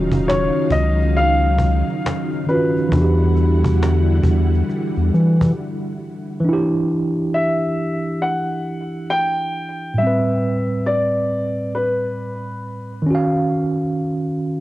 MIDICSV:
0, 0, Header, 1, 6, 480
1, 0, Start_track
1, 0, Tempo, 882353
1, 1591, Time_signature, 4, 2, 24, 8
1, 7944, End_track
2, 0, Start_track
2, 0, Title_t, "Upright piano"
2, 0, Program_c, 0, 0
2, 153, Note_on_c, 0, 73, 97
2, 393, Note_on_c, 0, 75, 88
2, 399, Note_off_c, 0, 73, 0
2, 635, Note_on_c, 0, 77, 101
2, 639, Note_off_c, 0, 75, 0
2, 1353, Note_on_c, 0, 71, 73
2, 1375, Note_off_c, 0, 77, 0
2, 2050, Note_off_c, 0, 71, 0
2, 3995, Note_on_c, 0, 76, 88
2, 4471, Note_on_c, 0, 78, 81
2, 4487, Note_off_c, 0, 76, 0
2, 4929, Note_off_c, 0, 78, 0
2, 4951, Note_on_c, 0, 79, 101
2, 5430, Note_on_c, 0, 76, 77
2, 5445, Note_off_c, 0, 79, 0
2, 5910, Note_on_c, 0, 74, 88
2, 5925, Note_off_c, 0, 76, 0
2, 6369, Note_off_c, 0, 74, 0
2, 6392, Note_on_c, 0, 71, 75
2, 7090, Note_off_c, 0, 71, 0
2, 7944, End_track
3, 0, Start_track
3, 0, Title_t, "Tine electric piano"
3, 0, Program_c, 1, 4
3, 0, Control_c, 1, 64, 127
3, 0, Note_on_c, 1, 51, 72
3, 0, Note_on_c, 1, 61, 70
3, 0, Note_on_c, 1, 65, 71
3, 0, Note_on_c, 1, 66, 84
3, 1316, Note_off_c, 1, 51, 0
3, 1327, Note_off_c, 1, 61, 0
3, 1338, Note_off_c, 1, 65, 0
3, 1340, Note_on_c, 1, 51, 41
3, 1350, Note_off_c, 1, 66, 0
3, 1352, Note_on_c, 1, 61, 41
3, 1363, Note_on_c, 1, 65, 46
3, 1375, Note_on_c, 1, 66, 50
3, 1571, Note_on_c, 1, 52, 62
3, 1586, Note_off_c, 1, 51, 0
3, 1592, Note_off_c, 1, 61, 0
3, 1595, Note_on_c, 1, 62, 50
3, 1597, Note_off_c, 1, 65, 0
3, 1599, Control_c, 1, 64, 0
3, 1603, Note_off_c, 1, 66, 0
3, 1617, Note_on_c, 1, 66, 54
3, 1641, Note_on_c, 1, 67, 61
3, 1704, Control_c, 1, 64, 127
3, 3476, Note_off_c, 1, 52, 0
3, 3483, Note_on_c, 1, 52, 70
3, 3491, Note_off_c, 1, 62, 0
3, 3503, Note_off_c, 1, 66, 0
3, 3507, Note_on_c, 1, 62, 56
3, 3514, Note_off_c, 1, 67, 0
3, 3517, Control_c, 1, 64, 0
3, 3529, Note_on_c, 1, 64, 64
3, 3552, Note_on_c, 1, 67, 85
3, 3615, Control_c, 1, 64, 127
3, 5395, Note_off_c, 1, 52, 0
3, 5407, Note_off_c, 1, 62, 0
3, 5408, Note_on_c, 1, 45, 58
3, 5419, Note_off_c, 1, 64, 0
3, 5430, Note_off_c, 1, 67, 0
3, 5431, Note_on_c, 1, 55, 51
3, 5439, Control_c, 1, 64, 0
3, 5454, Note_on_c, 1, 60, 51
3, 5477, Note_on_c, 1, 71, 66
3, 5540, Control_c, 1, 64, 127
3, 7078, Note_off_c, 1, 45, 0
3, 7084, Note_on_c, 1, 51, 72
3, 7090, Note_off_c, 1, 55, 0
3, 7101, Note_off_c, 1, 60, 0
3, 7107, Note_on_c, 1, 61, 64
3, 7113, Note_off_c, 1, 71, 0
3, 7119, Control_c, 1, 64, 0
3, 7130, Note_on_c, 1, 66, 64
3, 7153, Note_on_c, 1, 77, 77
3, 7209, Control_c, 1, 64, 127
3, 7944, Note_off_c, 1, 51, 0
3, 7944, Note_off_c, 1, 61, 0
3, 7944, Note_off_c, 1, 66, 0
3, 7944, Note_off_c, 1, 77, 0
3, 7944, End_track
4, 0, Start_track
4, 0, Title_t, "String machine"
4, 0, Program_c, 2, 50
4, 0, Note_on_c, 2, 49, 83
4, 0, Note_on_c, 2, 54, 80
4, 0, Note_on_c, 2, 63, 80
4, 0, Note_on_c, 2, 77, 100
4, 1571, Note_off_c, 2, 49, 0
4, 1572, Note_off_c, 2, 54, 0
4, 1572, Note_off_c, 2, 63, 0
4, 1572, Note_off_c, 2, 77, 0
4, 1594, Note_on_c, 2, 50, 70
4, 1594, Note_on_c, 2, 55, 69
4, 1594, Note_on_c, 2, 64, 72
4, 1594, Note_on_c, 2, 78, 81
4, 3493, Note_off_c, 2, 50, 0
4, 3493, Note_off_c, 2, 64, 0
4, 3493, Note_off_c, 2, 78, 0
4, 3494, Note_off_c, 2, 55, 0
4, 7944, End_track
5, 0, Start_track
5, 0, Title_t, "Sub bass"
5, 0, Program_c, 3, 38
5, 0, Note_on_c, 3, 27, 95
5, 274, Note_off_c, 3, 27, 0
5, 384, Note_on_c, 3, 37, 91
5, 997, Note_off_c, 3, 37, 0
5, 1589, Note_on_c, 3, 40, 100
5, 2288, Note_off_c, 3, 40, 0
5, 2303, Note_on_c, 3, 40, 90
5, 2517, Note_off_c, 3, 40, 0
5, 2705, Note_on_c, 3, 40, 83
5, 2782, Note_off_c, 3, 40, 0
5, 2796, Note_on_c, 3, 52, 112
5, 3005, Note_off_c, 3, 52, 0
5, 7944, End_track
6, 0, Start_track
6, 0, Title_t, "Cajon"
6, 63, Note_on_c, 9, 36, 96
6, 117, Note_off_c, 9, 36, 0
6, 161, Note_on_c, 9, 38, 99
6, 166, Note_off_c, 9, 38, 0
6, 166, Note_on_c, 9, 38, 79
6, 221, Note_off_c, 9, 38, 0
6, 384, Note_on_c, 9, 36, 79
6, 438, Note_off_c, 9, 36, 0
6, 551, Note_on_c, 9, 38, 25
6, 605, Note_off_c, 9, 38, 0
6, 634, Note_on_c, 9, 38, 56
6, 688, Note_off_c, 9, 38, 0
6, 862, Note_on_c, 9, 36, 86
6, 916, Note_off_c, 9, 36, 0
6, 1024, Note_on_c, 9, 38, 21
6, 1079, Note_off_c, 9, 38, 0
6, 1121, Note_on_c, 9, 38, 117
6, 1126, Note_off_c, 9, 38, 0
6, 1126, Note_on_c, 9, 38, 91
6, 1181, Note_off_c, 9, 38, 0
6, 1264, Note_on_c, 9, 38, 19
6, 1318, Note_off_c, 9, 38, 0
6, 1352, Note_on_c, 9, 38, 33
6, 1406, Note_off_c, 9, 38, 0
6, 1507, Note_on_c, 9, 38, 26
6, 1562, Note_off_c, 9, 38, 0
6, 1588, Note_on_c, 9, 36, 116
6, 1642, Note_off_c, 9, 36, 0
6, 1829, Note_on_c, 9, 38, 46
6, 1883, Note_off_c, 9, 38, 0
6, 1983, Note_on_c, 9, 36, 104
6, 2037, Note_off_c, 9, 36, 0
6, 2081, Note_on_c, 9, 38, 114
6, 2087, Note_off_c, 9, 38, 0
6, 2087, Note_on_c, 9, 38, 82
6, 2141, Note_off_c, 9, 38, 0
6, 2303, Note_on_c, 9, 36, 79
6, 2323, Note_on_c, 9, 38, 31
6, 2358, Note_off_c, 9, 36, 0
6, 2377, Note_off_c, 9, 38, 0
6, 2470, Note_on_c, 9, 38, 23
6, 2524, Note_off_c, 9, 38, 0
6, 2553, Note_on_c, 9, 38, 52
6, 2607, Note_off_c, 9, 38, 0
6, 2697, Note_on_c, 9, 38, 20
6, 2752, Note_off_c, 9, 38, 0
6, 2797, Note_on_c, 9, 38, 30
6, 2852, Note_off_c, 9, 38, 0
6, 2944, Note_on_c, 9, 36, 81
6, 2999, Note_off_c, 9, 36, 0
6, 7944, End_track
0, 0, End_of_file